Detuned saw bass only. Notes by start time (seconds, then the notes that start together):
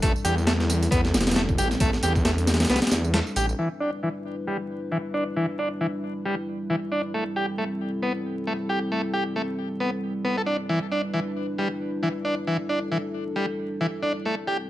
0.03 A1
0.25 E2
0.92 E2
1.14 E1
1.58 A1
1.80 A1
2.03 E2
2.69 C2
2.91 E2
3.36 A1